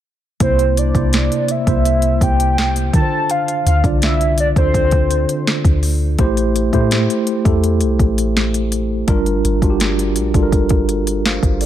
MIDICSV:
0, 0, Header, 1, 5, 480
1, 0, Start_track
1, 0, Tempo, 722892
1, 268, Time_signature, 4, 2, 24, 8
1, 7741, End_track
2, 0, Start_track
2, 0, Title_t, "Soft synth lead"
2, 0, Program_c, 0, 80
2, 279, Note_on_c, 0, 72, 97
2, 522, Note_on_c, 0, 74, 95
2, 532, Note_off_c, 0, 72, 0
2, 1003, Note_on_c, 0, 76, 115
2, 1013, Note_off_c, 0, 74, 0
2, 1480, Note_on_c, 0, 79, 114
2, 1490, Note_off_c, 0, 76, 0
2, 1954, Note_off_c, 0, 79, 0
2, 1960, Note_on_c, 0, 81, 110
2, 2196, Note_on_c, 0, 77, 110
2, 2206, Note_off_c, 0, 81, 0
2, 2432, Note_off_c, 0, 77, 0
2, 2441, Note_on_c, 0, 77, 97
2, 2534, Note_off_c, 0, 77, 0
2, 2680, Note_on_c, 0, 76, 99
2, 2898, Note_off_c, 0, 76, 0
2, 2922, Note_on_c, 0, 74, 95
2, 2973, Note_off_c, 0, 74, 0
2, 3040, Note_on_c, 0, 72, 88
2, 3848, Note_off_c, 0, 72, 0
2, 7741, End_track
3, 0, Start_track
3, 0, Title_t, "Tine electric piano"
3, 0, Program_c, 1, 4
3, 267, Note_on_c, 1, 48, 94
3, 271, Note_on_c, 1, 58, 83
3, 275, Note_on_c, 1, 64, 92
3, 280, Note_on_c, 1, 72, 102
3, 386, Control_c, 1, 64, 127
3, 522, Note_off_c, 1, 48, 0
3, 523, Note_off_c, 1, 58, 0
3, 526, Note_off_c, 1, 64, 0
3, 528, Note_off_c, 1, 72, 0
3, 628, Note_on_c, 1, 48, 78
3, 631, Note_on_c, 1, 58, 68
3, 636, Note_on_c, 1, 64, 71
3, 639, Note_on_c, 1, 72, 82
3, 966, Note_off_c, 1, 48, 0
3, 968, Note_off_c, 1, 58, 0
3, 970, Note_off_c, 1, 64, 0
3, 972, Note_off_c, 1, 72, 0
3, 1107, Note_on_c, 1, 48, 77
3, 1111, Note_on_c, 1, 58, 71
3, 1115, Note_on_c, 1, 64, 67
3, 1119, Note_on_c, 1, 72, 87
3, 1784, Note_off_c, 1, 48, 0
3, 1786, Note_off_c, 1, 58, 0
3, 1789, Note_off_c, 1, 64, 0
3, 1791, Note_off_c, 1, 72, 0
3, 1948, Note_on_c, 1, 50, 77
3, 1952, Note_on_c, 1, 62, 70
3, 1955, Control_c, 1, 64, 0
3, 1957, Note_on_c, 1, 65, 72
3, 1961, Note_on_c, 1, 70, 66
3, 1998, Note_off_c, 1, 70, 0
3, 2004, Note_on_c, 1, 72, 84
3, 2061, Control_c, 1, 64, 127
3, 2428, Note_off_c, 1, 50, 0
3, 2430, Note_off_c, 1, 62, 0
3, 2432, Note_off_c, 1, 65, 0
3, 2456, Note_off_c, 1, 72, 0
3, 2548, Note_on_c, 1, 50, 73
3, 2552, Note_on_c, 1, 62, 71
3, 2556, Note_on_c, 1, 65, 69
3, 2561, Note_on_c, 1, 74, 82
3, 2886, Note_off_c, 1, 50, 0
3, 2889, Note_off_c, 1, 62, 0
3, 2891, Note_off_c, 1, 65, 0
3, 2893, Note_off_c, 1, 74, 0
3, 3029, Note_on_c, 1, 50, 74
3, 3032, Note_on_c, 1, 62, 70
3, 3037, Note_on_c, 1, 65, 73
3, 3041, Note_on_c, 1, 69, 81
3, 3705, Note_off_c, 1, 50, 0
3, 3707, Note_off_c, 1, 62, 0
3, 3709, Note_off_c, 1, 65, 0
3, 3711, Note_off_c, 1, 69, 0
3, 4107, Note_on_c, 1, 57, 121
3, 4111, Note_on_c, 1, 64, 105
3, 4116, Note_on_c, 1, 67, 112
3, 4117, Control_c, 1, 64, 0
3, 4119, Note_on_c, 1, 72, 127
3, 4234, Control_c, 1, 64, 127
3, 4361, Note_off_c, 1, 57, 0
3, 4363, Note_off_c, 1, 64, 0
3, 4366, Note_off_c, 1, 67, 0
3, 4368, Note_off_c, 1, 72, 0
3, 4465, Note_on_c, 1, 57, 97
3, 4470, Note_on_c, 1, 64, 90
3, 4474, Note_on_c, 1, 67, 86
3, 4478, Note_on_c, 1, 72, 104
3, 4805, Note_off_c, 1, 57, 0
3, 4808, Note_off_c, 1, 64, 0
3, 4809, Note_off_c, 1, 67, 0
3, 4812, Note_off_c, 1, 72, 0
3, 4946, Note_on_c, 1, 57, 89
3, 4950, Note_on_c, 1, 64, 80
3, 4953, Note_on_c, 1, 67, 81
3, 4958, Note_on_c, 1, 69, 101
3, 5624, Note_off_c, 1, 57, 0
3, 5626, Note_off_c, 1, 64, 0
3, 5627, Note_off_c, 1, 67, 0
3, 5630, Note_off_c, 1, 69, 0
3, 6025, Note_on_c, 1, 55, 113
3, 6029, Note_on_c, 1, 62, 109
3, 6034, Note_on_c, 1, 65, 104
3, 6038, Control_c, 1, 64, 0
3, 6039, Note_on_c, 1, 70, 127
3, 6143, Control_c, 1, 64, 127
3, 6280, Note_off_c, 1, 55, 0
3, 6283, Note_off_c, 1, 62, 0
3, 6285, Note_off_c, 1, 65, 0
3, 6287, Note_off_c, 1, 70, 0
3, 6385, Note_on_c, 1, 55, 86
3, 6390, Note_on_c, 1, 62, 86
3, 6393, Note_on_c, 1, 65, 80
3, 6397, Note_on_c, 1, 66, 84
3, 6436, Note_off_c, 1, 66, 0
3, 6441, Note_on_c, 1, 67, 102
3, 6725, Note_off_c, 1, 55, 0
3, 6728, Note_off_c, 1, 62, 0
3, 6729, Note_off_c, 1, 65, 0
3, 6753, Note_off_c, 1, 67, 0
3, 6867, Note_on_c, 1, 55, 83
3, 6871, Note_on_c, 1, 62, 79
3, 6875, Note_on_c, 1, 65, 82
3, 6879, Note_on_c, 1, 69, 75
3, 6917, Note_off_c, 1, 69, 0
3, 6923, Note_on_c, 1, 70, 102
3, 7472, Note_off_c, 1, 65, 0
3, 7474, Note_on_c, 1, 77, 63
3, 7477, Note_on_c, 1, 72, 54
3, 7495, Note_off_c, 1, 70, 0
3, 7544, Note_off_c, 1, 55, 0
3, 7546, Note_off_c, 1, 62, 0
3, 7699, Note_off_c, 1, 77, 0
3, 7701, Note_off_c, 1, 72, 0
3, 7712, Note_on_c, 1, 74, 74
3, 7717, Note_on_c, 1, 69, 57
3, 7741, Note_off_c, 1, 69, 0
3, 7741, Note_off_c, 1, 74, 0
3, 7741, End_track
4, 0, Start_track
4, 0, Title_t, "808-style bass"
4, 0, Program_c, 2, 38
4, 269, Note_on_c, 2, 36, 109
4, 615, Note_off_c, 2, 36, 0
4, 629, Note_on_c, 2, 36, 102
4, 859, Note_off_c, 2, 36, 0
4, 1109, Note_on_c, 2, 36, 107
4, 1454, Note_off_c, 2, 36, 0
4, 1469, Note_on_c, 2, 36, 96
4, 1929, Note_off_c, 2, 36, 0
4, 1949, Note_on_c, 2, 50, 107
4, 2410, Note_off_c, 2, 50, 0
4, 2431, Note_on_c, 2, 38, 104
4, 2545, Note_off_c, 2, 38, 0
4, 2549, Note_on_c, 2, 36, 95
4, 3010, Note_off_c, 2, 36, 0
4, 3030, Note_on_c, 2, 38, 102
4, 3490, Note_off_c, 2, 38, 0
4, 3749, Note_on_c, 2, 38, 94
4, 4094, Note_off_c, 2, 38, 0
4, 4110, Note_on_c, 2, 33, 109
4, 4455, Note_off_c, 2, 33, 0
4, 4469, Note_on_c, 2, 45, 102
4, 4699, Note_off_c, 2, 45, 0
4, 4950, Note_on_c, 2, 40, 103
4, 5191, Note_on_c, 2, 36, 101
4, 5201, Note_off_c, 2, 40, 0
4, 5304, Note_off_c, 2, 36, 0
4, 5310, Note_on_c, 2, 33, 100
4, 6002, Note_off_c, 2, 33, 0
4, 6029, Note_on_c, 2, 31, 112
4, 6259, Note_off_c, 2, 31, 0
4, 6270, Note_on_c, 2, 31, 106
4, 6384, Note_off_c, 2, 31, 0
4, 6389, Note_on_c, 2, 31, 99
4, 6749, Note_on_c, 2, 34, 95
4, 6759, Note_off_c, 2, 31, 0
4, 6863, Note_off_c, 2, 34, 0
4, 6868, Note_on_c, 2, 31, 102
4, 7562, Note_off_c, 2, 31, 0
4, 7589, Note_on_c, 2, 31, 96
4, 7741, Note_off_c, 2, 31, 0
4, 7741, End_track
5, 0, Start_track
5, 0, Title_t, "Drums"
5, 268, Note_on_c, 9, 36, 118
5, 268, Note_on_c, 9, 42, 71
5, 334, Note_off_c, 9, 42, 0
5, 335, Note_off_c, 9, 36, 0
5, 392, Note_on_c, 9, 42, 49
5, 459, Note_off_c, 9, 42, 0
5, 514, Note_on_c, 9, 42, 80
5, 580, Note_off_c, 9, 42, 0
5, 629, Note_on_c, 9, 36, 84
5, 632, Note_on_c, 9, 42, 45
5, 695, Note_off_c, 9, 36, 0
5, 698, Note_off_c, 9, 42, 0
5, 749, Note_on_c, 9, 42, 70
5, 756, Note_on_c, 9, 38, 116
5, 816, Note_off_c, 9, 42, 0
5, 823, Note_off_c, 9, 38, 0
5, 875, Note_on_c, 9, 42, 51
5, 942, Note_off_c, 9, 42, 0
5, 986, Note_on_c, 9, 42, 71
5, 1052, Note_off_c, 9, 42, 0
5, 1109, Note_on_c, 9, 36, 98
5, 1110, Note_on_c, 9, 42, 50
5, 1175, Note_off_c, 9, 36, 0
5, 1176, Note_off_c, 9, 42, 0
5, 1231, Note_on_c, 9, 42, 64
5, 1298, Note_off_c, 9, 42, 0
5, 1342, Note_on_c, 9, 42, 55
5, 1409, Note_off_c, 9, 42, 0
5, 1469, Note_on_c, 9, 36, 94
5, 1471, Note_on_c, 9, 42, 64
5, 1535, Note_off_c, 9, 36, 0
5, 1537, Note_off_c, 9, 42, 0
5, 1593, Note_on_c, 9, 42, 76
5, 1659, Note_off_c, 9, 42, 0
5, 1715, Note_on_c, 9, 38, 118
5, 1781, Note_off_c, 9, 38, 0
5, 1832, Note_on_c, 9, 42, 52
5, 1899, Note_off_c, 9, 42, 0
5, 1949, Note_on_c, 9, 36, 117
5, 1950, Note_on_c, 9, 42, 64
5, 2015, Note_off_c, 9, 36, 0
5, 2016, Note_off_c, 9, 42, 0
5, 2188, Note_on_c, 9, 42, 70
5, 2255, Note_off_c, 9, 42, 0
5, 2313, Note_on_c, 9, 42, 49
5, 2379, Note_off_c, 9, 42, 0
5, 2434, Note_on_c, 9, 42, 76
5, 2501, Note_off_c, 9, 42, 0
5, 2549, Note_on_c, 9, 36, 85
5, 2552, Note_on_c, 9, 42, 45
5, 2615, Note_off_c, 9, 36, 0
5, 2618, Note_off_c, 9, 42, 0
5, 2669, Note_on_c, 9, 42, 64
5, 2676, Note_on_c, 9, 38, 121
5, 2736, Note_off_c, 9, 42, 0
5, 2742, Note_off_c, 9, 38, 0
5, 2794, Note_on_c, 9, 42, 50
5, 2861, Note_off_c, 9, 42, 0
5, 2906, Note_on_c, 9, 42, 65
5, 2973, Note_off_c, 9, 42, 0
5, 3029, Note_on_c, 9, 36, 101
5, 3032, Note_on_c, 9, 42, 52
5, 3096, Note_off_c, 9, 36, 0
5, 3098, Note_off_c, 9, 42, 0
5, 3149, Note_on_c, 9, 36, 93
5, 3151, Note_on_c, 9, 42, 63
5, 3215, Note_off_c, 9, 36, 0
5, 3218, Note_off_c, 9, 42, 0
5, 3263, Note_on_c, 9, 42, 51
5, 3269, Note_on_c, 9, 36, 85
5, 3329, Note_off_c, 9, 42, 0
5, 3335, Note_off_c, 9, 36, 0
5, 3390, Note_on_c, 9, 42, 64
5, 3457, Note_off_c, 9, 42, 0
5, 3513, Note_on_c, 9, 42, 78
5, 3579, Note_off_c, 9, 42, 0
5, 3635, Note_on_c, 9, 38, 115
5, 3701, Note_off_c, 9, 38, 0
5, 3749, Note_on_c, 9, 36, 93
5, 3752, Note_on_c, 9, 42, 52
5, 3815, Note_off_c, 9, 36, 0
5, 3818, Note_off_c, 9, 42, 0
5, 3870, Note_on_c, 9, 46, 69
5, 3936, Note_off_c, 9, 46, 0
5, 4107, Note_on_c, 9, 42, 74
5, 4108, Note_on_c, 9, 36, 120
5, 4174, Note_off_c, 9, 42, 0
5, 4175, Note_off_c, 9, 36, 0
5, 4231, Note_on_c, 9, 42, 53
5, 4297, Note_off_c, 9, 42, 0
5, 4353, Note_on_c, 9, 42, 76
5, 4420, Note_off_c, 9, 42, 0
5, 4469, Note_on_c, 9, 36, 84
5, 4471, Note_on_c, 9, 42, 47
5, 4535, Note_off_c, 9, 36, 0
5, 4537, Note_off_c, 9, 42, 0
5, 4589, Note_on_c, 9, 42, 69
5, 4596, Note_on_c, 9, 38, 118
5, 4655, Note_off_c, 9, 42, 0
5, 4662, Note_off_c, 9, 38, 0
5, 4715, Note_on_c, 9, 42, 51
5, 4781, Note_off_c, 9, 42, 0
5, 4826, Note_on_c, 9, 42, 66
5, 4893, Note_off_c, 9, 42, 0
5, 4949, Note_on_c, 9, 36, 99
5, 4950, Note_on_c, 9, 42, 51
5, 5015, Note_off_c, 9, 36, 0
5, 5017, Note_off_c, 9, 42, 0
5, 5070, Note_on_c, 9, 42, 65
5, 5137, Note_off_c, 9, 42, 0
5, 5183, Note_on_c, 9, 42, 55
5, 5249, Note_off_c, 9, 42, 0
5, 5308, Note_on_c, 9, 36, 97
5, 5310, Note_on_c, 9, 42, 64
5, 5375, Note_off_c, 9, 36, 0
5, 5377, Note_off_c, 9, 42, 0
5, 5432, Note_on_c, 9, 42, 71
5, 5498, Note_off_c, 9, 42, 0
5, 5555, Note_on_c, 9, 38, 115
5, 5622, Note_off_c, 9, 38, 0
5, 5672, Note_on_c, 9, 42, 54
5, 5739, Note_off_c, 9, 42, 0
5, 5789, Note_on_c, 9, 42, 65
5, 5856, Note_off_c, 9, 42, 0
5, 6027, Note_on_c, 9, 42, 75
5, 6028, Note_on_c, 9, 36, 124
5, 6094, Note_off_c, 9, 42, 0
5, 6095, Note_off_c, 9, 36, 0
5, 6151, Note_on_c, 9, 42, 50
5, 6217, Note_off_c, 9, 42, 0
5, 6273, Note_on_c, 9, 42, 76
5, 6340, Note_off_c, 9, 42, 0
5, 6388, Note_on_c, 9, 36, 87
5, 6390, Note_on_c, 9, 42, 46
5, 6454, Note_off_c, 9, 36, 0
5, 6457, Note_off_c, 9, 42, 0
5, 6508, Note_on_c, 9, 42, 66
5, 6515, Note_on_c, 9, 38, 117
5, 6574, Note_off_c, 9, 42, 0
5, 6581, Note_off_c, 9, 38, 0
5, 6634, Note_on_c, 9, 42, 54
5, 6700, Note_off_c, 9, 42, 0
5, 6744, Note_on_c, 9, 42, 72
5, 6811, Note_off_c, 9, 42, 0
5, 6868, Note_on_c, 9, 36, 101
5, 6868, Note_on_c, 9, 42, 50
5, 6934, Note_off_c, 9, 36, 0
5, 6935, Note_off_c, 9, 42, 0
5, 6988, Note_on_c, 9, 36, 89
5, 6989, Note_on_c, 9, 42, 66
5, 7054, Note_off_c, 9, 36, 0
5, 7056, Note_off_c, 9, 42, 0
5, 7101, Note_on_c, 9, 42, 57
5, 7108, Note_on_c, 9, 36, 89
5, 7167, Note_off_c, 9, 42, 0
5, 7174, Note_off_c, 9, 36, 0
5, 7229, Note_on_c, 9, 42, 63
5, 7296, Note_off_c, 9, 42, 0
5, 7351, Note_on_c, 9, 42, 70
5, 7417, Note_off_c, 9, 42, 0
5, 7474, Note_on_c, 9, 38, 108
5, 7540, Note_off_c, 9, 38, 0
5, 7588, Note_on_c, 9, 36, 95
5, 7591, Note_on_c, 9, 42, 52
5, 7654, Note_off_c, 9, 36, 0
5, 7658, Note_off_c, 9, 42, 0
5, 7707, Note_on_c, 9, 42, 58
5, 7709, Note_on_c, 9, 46, 67
5, 7741, Note_off_c, 9, 42, 0
5, 7741, Note_off_c, 9, 46, 0
5, 7741, End_track
0, 0, End_of_file